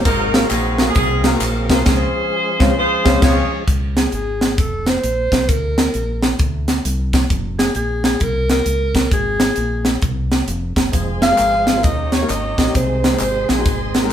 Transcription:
0.05 fingered electric bass G#1, upright piano G#2, tonewheel organ F#3 A#3 C4 G#4 F5, saxophone section D#4 F#4 A#4, kick, ride, tambourine
0.34 upright piano A#3 C4 F4 F#4 G#4, snare, ride, tambourine
0.50 fingered electric bass A#1, saxophone section C4 D#4 G#4, clap, ride, tambourine
0.78 upright piano A#3 C4 F4 F#4 A#4, snare, ride, tambourine
0.90 saxophone section G#4
0.95 fingered electric bass C2, saxophone section C4 D#4 G#4, kick, ride, tambourine
1.24 upright piano A#3 C4 F4 F#4 A#4, snare, ride, tambourine
1.33 saxophone section D#4 F#4 A#4
1.40 fingered electric bass A#1, clap, ride, tambourine
1.69 fingered electric bass C2, upright piano A#3 C4 F4 F#4 A#4, saxophone section F4 G#4 C5, kick, snare, ride, tambourine
1.86 fingered electric bass C#2, tonewheel organ F3 G#3 C#4 G#4, kick, snare, crash
2.60 fingered electric bass C#2, upright piano G#3 C4 C#4 F4, kick, snare
2.78 saxophone section F4 G#4 C5
3.04 fingered electric bass C#2, upright piano G#3 C4 C#4 F4, kick, snare
3.21 fingered electric bass C#2, upright piano G#3 C4 C#4 F4, saxophone section F4 G#4 C#5, kick, snare, crash
3.67 fingered electric bass C#2, kick, closed hi-hat
3.97 alto saxophone G#4, snare, closed hi-hat
4.12 fingered electric bass G#1, alto saxophone G#4, closed hi-hat
4.41 snare, closed hi-hat
4.58 fingered electric bass F1, alto saxophone A4, kick, closed hi-hat
4.86 alto saxophone C5, snare, closed hi-hat
5.04 fingered electric bass A#1, closed hi-hat
5.32 fingered electric bass C2, kick, snare, closed hi-hat
5.49 fingered electric bass D2, alto saxophone A#4, kick, closed hi-hat
5.78 snare, closed hi-hat
5.94 fingered electric bass A#1, closed hi-hat
6.22 snare, closed hi-hat
6.39 fingered electric bass D2, kick, closed hi-hat
6.68 snare, closed hi-hat
6.85 fingered electric bass C2, closed hi-hat
7.13 kick, snare, closed hi-hat
7.30 fingered electric bass F#1, kick, closed hi-hat
7.58 alto saxophone G#4, snare, closed hi-hat
7.75 fingered electric bass A#1, alto saxophone G#4, closed hi-hat
8.04 alto saxophone G#4, snare, closed hi-hat
8.20 fingered electric bass C2, alto saxophone A#4, kick, closed hi-hat
8.49 alto saxophone A#4, snare, closed hi-hat
8.66 fingered electric bass C#2, closed hi-hat
8.95 kick, snare, closed hi-hat
9.11 fingered electric bass G#1, alto saxophone G#4, kick, closed hi-hat
9.40 snare, closed hi-hat
9.56 fingered electric bass A#1, closed hi-hat
9.85 snare, closed hi-hat
10.02 fingered electric bass C2, kick, closed hi-hat
10.31 snare, closed hi-hat
10.48 fingered electric bass F1, closed hi-hat
10.76 fingered electric bass F#1, kick, snare, closed hi-hat
10.92 fingered electric bass F1, tonewheel organ F3 G#3 C4 G#4, string section C5 F5 G#5 C6, kick, closed hi-hat, tambourine
11.22 upright piano F4 G#4, alto saxophone F5, snare, closed hi-hat, tambourine
11.30 upright piano G#3 C4 F4 A#4
11.38 fingered electric bass G#1, clap, closed hi-hat, tambourine
11.67 upright piano F4 G#4, snare, closed hi-hat, tambourine
11.76 upright piano G#3 C4 F4 A#4
11.83 fingered electric bass D#2, tonewheel organ D#3 A#3 C#4 F#4, upright piano D#3, string section C#5 D#5 G5 A#5, alto saxophone D#5, kick, closed hi-hat, tambourine
11.90 tonewheel organ G4
12.12 upright piano D#4 G4, alto saxophone C#5, snare, closed hi-hat, tambourine
12.21 upright piano A#3 C#4 D#4 A#4
12.29 fingered electric bass G#1, alto saxophone D#5, clap, closed hi-hat, tambourine
12.58 fingered electric bass A#1, upright piano D#4 G4, kick, snare, closed hi-hat, tambourine
12.66 upright piano A#3 C#4 D#4 G4
12.74 fingered electric bass C2, upright piano C3, tonewheel organ D#3 G#3 C4 G#4, alto saxophone C5, string section C5 D#5 G#5 C6, kick, closed hi-hat, tambourine
13.04 upright piano D#4 G#4, snare, closed hi-hat, tambourine
13.12 upright piano G#3 C4 D#4 G#4
13.20 fingered electric bass G#1, alto saxophone C5, clap, closed hi-hat, tambourine
13.49 fingered electric bass A#1, upright piano D#4 F4, alto saxophone G#4, snare, closed hi-hat, tambourine
13.58 upright piano G#3 C4 D#4 F#4
13.65 fingered electric bass G#1, kick, closed hi-hat, tambourine
13.94 upright piano D#4 A#4, snare, closed hi-hat, tambourine
14.02 upright piano G#3 C4 D#4 A#4

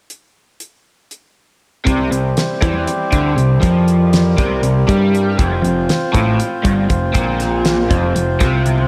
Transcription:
0.10 closed hi-hat
0.60 closed hi-hat
1.11 closed hi-hat
1.85 picked electric bass C2, overdriven electric guitar C3, harmonium G3 C4 E4 G4 C5, kick, closed hi-hat, high conga, low conga
1.99 low conga
2.12 picked electric bass C2, overdriven electric guitar C3, closed hi-hat
2.37 snare, closed hi-hat
2.49 low conga
2.61 picked electric bass E2, overdriven electric guitar E3, kick, closed hi-hat, low conga
2.74 high conga
2.87 closed hi-hat
3.12 picked electric bass D2, overdriven electric guitar D3, kick, closed hi-hat
3.37 picked electric bass C2, overdriven electric guitar C3, closed hi-hat
3.61 picked electric bass F2, overdriven electric guitar F3, harmonium A#4, kick, closed hi-hat, high conga, low conga
3.74 low conga
3.88 closed hi-hat
4.13 snare, closed hi-hat
4.37 picked electric bass C2, overdriven electric guitar C3, kick, closed hi-hat, low conga
4.49 high conga
4.63 picked electric bass C2, overdriven electric guitar C3, closed hi-hat
4.87 picked electric bass G2, overdriven electric guitar G3, kick, closed hi-hat, low conga
5.15 closed hi-hat
5.37 picked electric bass F1, overdriven electric guitar F2, harmonium F4 C5, kick, closed hi-hat, high conga, low conga
5.51 low conga
5.62 picked electric bass F1, overdriven electric guitar F2, closed hi-hat
5.76 low conga
5.89 snare, closed hi-hat
6.02 low conga
6.13 picked electric bass A1, overdriven electric guitar A2, kick, closed hi-hat, low conga
6.26 high conga
6.40 closed hi-hat
6.63 picked electric bass G1, overdriven electric guitar G2, kick, closed hi-hat, low conga
6.90 picked electric bass F1, overdriven electric guitar F2, kick, closed hi-hat
7.14 picked electric bass A#1, overdriven electric guitar A#2, kick, closed hi-hat, high conga
7.27 low conga
7.40 snare, closed hi-hat
7.53 low conga
7.65 snare, closed hi-hat
7.89 picked electric bass F1, overdriven electric guitar F2, kick, closed hi-hat, low conga
8.04 high conga
8.15 picked electric bass F1, overdriven electric guitar F2, closed hi-hat, low conga
8.40 picked electric bass C2, overdriven electric guitar C3, kick, snare, closed hi-hat, high conga
8.54 high conga
8.65 closed hi-hat, low conga
8.78 low conga

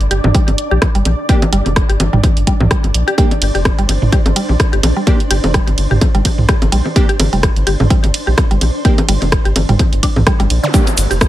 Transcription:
Already playing: synth texture D4 D5
0.01 analog synth bass G1, closed hi-hat
0.11 analog synth bass G1, synth arpeggio sound G4, closed hi-hat
0.24 analog synth bass G1, mid tom, low bongo
0.35 synth arpeggio sound G3, kick, closed hi-hat
0.48 analog synth bass G1, closed hi-hat, low bongo
0.58 closed hi-hat
0.71 analog synth bass A#1, synth arpeggio sound G4
0.82 kick, cross-stick, closed hi-hat, low bongo
0.95 analog synth bass G1, synth arpeggio sound G3, closed hi-hat
1.05 analog synth bass A#1, closed hi-hat, low bongo
1.29 synth stab A#3 D4 G4, synth arpeggio sound G4, kick, closed hi-hat
1.42 closed hi-hat, low bongo
1.53 analog synth bass G1, synth arpeggio sound G3, closed hi-hat
1.66 analog synth bass F1, closed hi-hat, low bongo
1.76 kick, cross-stick, closed hi-hat
1.89 analog synth bass G1, synth arpeggio sound G4, closed hi-hat
2.00 analog synth bass G1, closed hi-hat, low bongo
2.13 analog synth bass G1, synth arpeggio sound G3, mid tom
2.24 kick, closed hi-hat, low bongo
2.37 analog synth bass G1, closed hi-hat
2.47 synth arpeggio sound G3, kick, closed hi-hat
2.60 analog synth bass A#1, mid tom, low bongo
2.71 synth arpeggio sound G3, kick, cross-stick, closed hi-hat
2.84 analog synth bass G1, closed hi-hat, low bongo
2.94 analog synth bass A#1, closed hi-hat
3.08 synth arpeggio sound G4, closed hi-hat
3.18 synth arpeggio sound G3, synth stab A#3 D4 G4, synth texture C5, kick, closed hi-hat
3.31 closed hi-hat, low bongo
3.42 analog synth bass G1, closed hi-hat, ride
3.55 analog synth bass F1, synth arpeggio sound G4, closed hi-hat
3.65 kick, cross-stick, closed hi-hat, low bongo
3.78 analog synth bass G1, synth arpeggio sound G3, closed hi-hat
3.89 analog synth bass G1, closed hi-hat, ride, low bongo
4.02 analog synth bass G1, mid tom
4.12 synth arpeggio sound G4, kick, closed hi-hat
4.26 analog synth bass G1, closed hi-hat, low bongo
4.36 synth arpeggio sound G3, closed hi-hat, ride
4.49 analog synth bass A#1, low bongo
4.60 kick, cross-stick, closed hi-hat
4.73 analog synth bass G1, synth arpeggio sound G4, closed hi-hat
4.83 analog synth bass A#1, closed hi-hat, ride, low bongo
4.96 synth arpeggio sound G3
5.07 synth stab A#3 D4 G4, kick, closed hi-hat, low bongo
5.20 closed hi-hat
5.31 analog synth bass G1, synth arpeggio sound G4, closed hi-hat, ride
5.44 analog synth bass F1, closed hi-hat, low bongo
5.54 synth arpeggio sound G3, kick, cross-stick, closed hi-hat
5.67 analog synth bass G1, closed hi-hat, low bongo
5.78 analog synth bass G1, closed hi-hat, ride
5.91 analog synth bass G1, synth arpeggio sound G4, mid tom
6.01 kick, closed hi-hat, low bongo
6.15 analog synth bass G1, synth arpeggio sound G3, closed hi-hat
6.25 kick, closed hi-hat, ride, low bongo
6.38 analog synth bass A#1, mid tom
6.49 synth arpeggio sound G4, kick, cross-stick, closed hi-hat
6.62 analog synth bass G1, closed hi-hat, low bongo
6.72 analog synth bass A#1, synth arpeggio sound G3, closed hi-hat, ride
6.86 low bongo
6.96 synth stab A#3 D4 G4, kick, closed hi-hat
7.09 synth arpeggio sound G4, closed hi-hat
7.20 analog synth bass G1, closed hi-hat, ride, low bongo
7.33 analog synth bass F1, synth arpeggio sound G3, closed hi-hat
7.43 kick, cross-stick, closed hi-hat, low bongo
7.56 analog synth bass G1, closed hi-hat
7.67 analog synth bass G1, synth arpeggio sound G4, closed hi-hat, ride
7.80 analog synth bass G1, mid tom, low bongo
7.90 synth arpeggio sound G3, kick, closed hi-hat
8.04 analog synth bass G1, closed hi-hat, low bongo
8.14 closed hi-hat, ride
8.27 analog synth bass A#1, synth arpeggio sound G4
8.38 kick, cross-stick, closed hi-hat, low bongo
8.51 analog synth bass G1, synth arpeggio sound G3, closed hi-hat
8.61 analog synth bass A#1, closed hi-hat, ride, low bongo
8.85 synth stab A#3 D4 G4, synth arpeggio sound G4, kick, closed hi-hat
8.98 closed hi-hat, low bongo
9.08 analog synth bass G1, synth arpeggio sound G3, closed hi-hat, ride
9.22 analog synth bass F1, closed hi-hat, low bongo
9.32 kick, cross-stick, closed hi-hat
9.45 analog synth bass G1, synth arpeggio sound G4, closed hi-hat
9.56 analog synth bass G1, closed hi-hat, ride, low bongo
9.69 analog synth bass G1, synth arpeggio sound G3, closed hi-hat, mid tom
9.79 kick, closed hi-hat, low bongo
9.93 analog synth bass G1, closed hi-hat
10.03 synth arpeggio sound D4, kick, closed hi-hat, ride
10.16 analog synth bass A#1, mid tom, low bongo
10.27 synth arpeggio sound G3, kick, cross-stick, closed hi-hat
10.40 analog synth bass G1, synth arpeggio sound G3, closed hi-hat, low bongo
10.50 analog synth bass A#1, closed hi-hat, ride
10.63 synth arpeggio sound D3, zap
10.74 synth arpeggio sound G3, synth stab A#3 D4 G4, synth texture A#3 A#4, kick, closed hi-hat, shaker
10.87 closed hi-hat, low bongo, shaker
10.98 analog synth bass G1, closed hi-hat, ride, shaker
11.11 analog synth bass F1, synth arpeggio sound G4, closed hi-hat, shaker
11.21 kick, cross-stick, closed hi-hat, low bongo, shaker

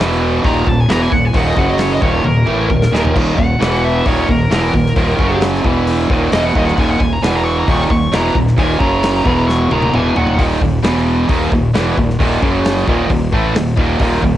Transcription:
0.00 fingered electric bass E1, distorted electric guitar E2 B2 E3, snare
0.12 snare
0.42 fingered electric bass D#1, distorted electric guitar D#2 A#2 D#3, lead electric guitar A#5, kick, open hi-hat
0.66 fingered electric bass D#1, distorted electric guitar D#2 A#2, lead electric guitar A5, kick
0.80 lead electric guitar G#5
0.88 fingered electric bass E1, distorted electric guitar E2 B2 E3, lead electric guitar A#5, snare, open hi-hat
1.02 lead electric guitar G#5
1.11 fingered electric bass D#1, distorted electric guitar D#2 A#2, lead electric guitar F#5, kick
1.25 lead electric guitar G#5
1.33 fingered electric bass D#1, distorted electric guitar D#2 A#2 D#3, lead electric guitar F#5, kick, open hi-hat
1.47 lead electric guitar D#5
1.56 fingered electric bass F#1, distorted electric guitar F#2 C#3 F#3, lead electric guitar F#5, kick
1.69 lead electric guitar D#5
1.78 lead electric guitar C#5, snare, open hi-hat
1.91 lead electric guitar D#5, snare
2.01 fingered electric bass D#1, distorted electric guitar D#2 A#2 D#3, lead electric guitar C#5, kick
2.23 fingered electric bass D#1, distorted electric guitar D#2 A#2, lead electric guitar A#4, high tom
2.46 fingered electric bass A1, distorted electric guitar A2 E3 A3, mid tom
2.69 fingered electric bass D#1, distorted electric guitar D#2 A#2, kick
2.82 snare
2.91 fingered electric bass D#1, distorted electric guitar D#2 A#2 D#3, snare
3.05 floor tom
3.15 fingered electric bass D#1, distorted electric guitar D#2 A#2 D#3, kick, crash
3.37 fingered electric bass D#1, distorted electric guitar D#2 A#2, lead electric guitar F#5, kick
3.59 fingered electric bass E1, distorted electric guitar E2 B2 E3, snare, open hi-hat
3.74 snare
3.85 lead electric guitar E5
4.04 fingered electric bass D#1, distorted electric guitar D#2 A#2 D#3, lead electric guitar C#5, kick, open hi-hat
4.27 fingered electric bass D#1, distorted electric guitar D#2 A#2, lead electric guitar A#4, kick
4.50 fingered electric bass E1, distorted electric guitar E2 B2 E3, lead electric guitar A#4, snare, open hi-hat
4.73 fingered electric bass D#1, distorted electric guitar D#2 A#2, kick
4.86 snare
4.96 fingered electric bass D#1, distorted electric guitar D#2 A#2 D#3, kick, open hi-hat
5.18 fingered electric bass F#1, distorted electric guitar F#2 C#3 F#3, kick
5.41 snare, open hi-hat
5.55 snare
5.64 fingered electric bass E1, distorted electric guitar E2 B2 E3, kick
5.87 open hi-hat
6.09 fingered electric bass D#1, distorted electric guitar D#2 A#2 D#3, kick
6.32 fingered electric bass E1, distorted electric guitar E2 B2 E3, lead electric guitar D#5, snare, open hi-hat
6.45 lead electric guitar F#5
6.54 fingered electric bass D#1, distorted electric guitar D#2 A#2 D#3, lead electric guitar D#5, kick
6.66 lead electric guitar F#5, snare
6.77 fingered electric bass D#1, distorted electric guitar D#2 A#2 D#3, lead electric guitar G#5, kick, open hi-hat
6.90 lead electric guitar F#5
7.00 fingered electric bass D#1, distorted electric guitar D#2 A#2, lead electric guitar G#5, kick
7.13 lead electric guitar A#5
7.22 fingered electric bass E1, distorted electric guitar E2 B2 E3, lead electric guitar G#5, snare, open hi-hat
7.35 lead electric guitar A#5, snare
7.44 lead electric guitar C#6
7.58 lead electric guitar A#5
7.68 fingered electric bass D#1, distorted electric guitar D#2 A#2 D#3, lead electric guitar C#6, kick, open hi-hat
7.90 fingered electric bass D#1, distorted electric guitar D#2 A#2, lead electric guitar C#6, kick
8.12 fingered electric bass E1, distorted electric guitar E2 B2 E3, lead electric guitar A#5, snare, open hi-hat
8.34 fingered electric bass D#1, distorted electric guitar D#2 A#2, kick
8.47 snare
8.57 fingered electric bass D#1, distorted electric guitar D#2 A#2 D#3, lead electric guitar G#5, kick, open hi-hat
8.79 fingered electric bass F#1, distorted electric guitar F#2 C#3 F#3, lead electric guitar A#5, kick
9.03 snare, open hi-hat
9.15 snare
9.25 fingered electric bass E1, distorted electric guitar E2 B2 E3, kick
9.48 lead electric guitar C#6, snare
9.71 fingered electric bass D#1, distorted electric guitar D#2 A#2 D#3, lead electric guitar A#5, high tom
9.82 high tom
9.93 fingered electric bass E1, distorted electric guitar E2 B2 E3, lead electric guitar G#5, mid tom
10.15 fingered electric bass D#1, distorted electric guitar D#2 A#2 D#3, lead electric guitar F#5, floor tom
10.27 floor tom
10.38 fingered electric bass D#1, distorted electric guitar D#2 A#2 D#3, kick, open hi-hat
10.61 fingered electric bass D#1, distorted electric guitar D#2 A#2, kick
10.83 fingered electric bass E1, distorted electric guitar E2 B2 E3, snare, open hi-hat
10.97 snare
11.28 fingered electric bass D#1, distorted electric guitar D#2 A#2 D#3, kick, open hi-hat
11.52 fingered electric bass D#1, distorted electric guitar D#2 A#2, kick
11.74 fingered electric bass E1, distorted electric guitar E2 B2 E3, snare, open hi-hat
11.97 fingered electric bass D#1, distorted electric guitar D#2 A#2, kick
12.10 snare
12.20 fingered electric bass D#1, distorted electric guitar D#2 A#2 D#3, kick, open hi-hat
12.42 fingered electric bass F#1, distorted electric guitar F#2 C#3 F#3, kick
12.65 snare, open hi-hat
12.77 snare
12.87 fingered electric bass D#1, distorted electric guitar D#2 A#2 D#3, kick
13.10 fingered electric bass D#1, distorted electric guitar D#2 A#2, kick, open hi-hat
13.32 fingered electric bass A1, distorted electric guitar A2 E3 A3, kick
13.54 fingered electric bass D#1, distorted electric guitar D#2 A#2, snare, open hi-hat
13.77 fingered electric bass D#1, distorted electric guitar D#2 A#2 D#3, kick
13.99 fingered electric bass D#1, distorted electric guitar D#2 A#2 D#3, kick, open hi-hat
14.22 fingered electric bass D#1, distorted electric guitar D#2 A#2, kick

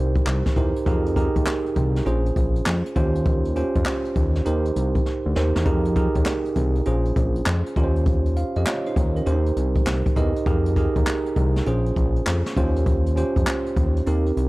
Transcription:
Already playing: analog synth bass C2, tine electric piano D#4 G4 A#4 C5
0.16 kick, closed hi-hat
0.26 analog synth bass C2, snare, clap
0.46 kick, snare, closed hi-hat
0.56 analog synth bass E2, tine electric piano D#4 G4 A#4 C5, kick, closed hi-hat
0.76 closed hi-hat
0.86 analog synth bass F2, tine electric piano D#4 G4 G#4 A#4, kick, closed hi-hat
1.06 closed hi-hat
1.16 tine electric piano D#4 G4 G#4 A#4, kick, closed hi-hat
1.36 analog synth bass D#2, kick, closed hi-hat
1.46 snare, clap
1.66 closed hi-hat
1.76 analog synth bass C2, kick, closed hi-hat
1.96 snare, closed hi-hat
2.05 analog synth bass A#1, tine electric piano C#4 F4 G#4 C5, closed hi-hat
2.26 closed hi-hat
2.36 analog synth bass A#1, kick, closed hi-hat
2.56 closed hi-hat
2.66 analog synth bass F2, snare, clap
2.86 closed hi-hat
2.96 analog synth bass D#2, tine electric piano C#4 F4 G4 C5, kick, closed hi-hat
3.15 closed hi-hat
3.25 kick, closed hi-hat
3.45 closed hi-hat
3.56 tine electric piano C#4 F4 G4 C5, closed hi-hat
3.75 analog synth bass F2, kick, closed hi-hat
3.85 snare, clap
4.05 closed hi-hat
4.16 analog synth bass D#2, kick, closed hi-hat
4.35 snare, closed hi-hat
4.45 analog synth bass D#2, tine electric piano D#4 G4 A#4 C5, closed hi-hat
4.65 closed hi-hat
4.76 analog synth bass C2, closed hi-hat
4.95 kick, closed hi-hat
5.06 snare
5.26 analog synth bass D2
5.36 analog synth bass D#2, tine electric piano D#4 G4 A#4 C5, snare
5.56 analog synth bass E2, snare
5.65 analog synth bass F2, tine electric piano D#4 G4 G#4 A#4, kick, closed hi-hat
5.85 closed hi-hat
5.96 tine electric piano D#4 G4 G#4 A#4, kick, closed hi-hat
6.15 analog synth bass D#2, kick, closed hi-hat
6.26 snare, clap
6.45 closed hi-hat
6.56 analog synth bass C2, kick, closed hi-hat
6.75 closed hi-hat
6.85 analog synth bass A#1, tine electric piano C#4 F4 G#4 C5, closed hi-hat
7.05 closed hi-hat
7.16 analog synth bass A#1, kick, closed hi-hat
7.36 closed hi-hat
7.46 analog synth bass F2, snare, clap
7.66 closed hi-hat
7.76 analog synth bass D#2, tine electric piano C#4 F4 G4 A#4, kick, closed hi-hat
7.84 tine electric piano C5
7.96 closed hi-hat
8.06 kick, closed hi-hat
8.26 closed hi-hat
8.36 tine electric piano F5, closed hi-hat
8.56 analog synth bass F2, tine electric piano G4 D#5, closed hi-hat
8.66 tine electric piano F4 C#5, snare, clap
8.86 tine electric piano D#4 C5, closed hi-hat
8.96 analog synth bass D#2, kick, closed hi-hat
9.16 tine electric piano C#4 A#4, closed hi-hat
9.26 analog synth bass D#2, tine electric piano C#4 G4 A#4 C5, closed hi-hat
9.33 tine electric piano D#4
9.46 closed hi-hat
9.56 analog synth bass C2, closed hi-hat
9.76 kick, closed hi-hat
9.87 analog synth bass C2, snare, clap
10.06 kick, closed hi-hat
10.16 analog synth bass E2, tine electric piano D#4 G4 A#4 D#5, kick, closed hi-hat
10.36 closed hi-hat
10.46 analog synth bass F2, tine electric piano D#4 G4 G#4 A#4, kick, closed hi-hat
10.66 closed hi-hat
10.76 tine electric piano D#4 G4 G#4 A#4, kick, closed hi-hat
10.96 analog synth bass D#2, kick, closed hi-hat
11.07 snare, clap
11.26 closed hi-hat
11.36 analog synth bass C2, kick, closed hi-hat
11.56 snare, closed hi-hat
11.66 analog synth bass A#1, tine electric piano C#4 F4 G#4 C5, closed hi-hat
11.86 closed hi-hat
11.96 analog synth bass A#1, kick, closed hi-hat
12.16 closed hi-hat
12.27 analog synth bass F2, snare, clap
12.46 snare, closed hi-hat
12.56 analog synth bass D#2, tine electric piano C#4 F4 G4 C5, kick, closed hi-hat
12.76 closed hi-hat
12.86 kick, closed hi-hat
13.06 closed hi-hat
13.16 tine electric piano C#4 F4 G4 C5, closed hi-hat
13.36 analog synth bass F2, kick, closed hi-hat
13.47 snare, clap
13.66 closed hi-hat
13.76 analog synth bass D#2, kick, closed hi-hat
13.96 closed hi-hat
14.06 analog synth bass D#2, tine electric piano C4 D#4 G4 A#4, closed hi-hat
14.26 closed hi-hat
14.37 analog synth bass C2, closed hi-hat

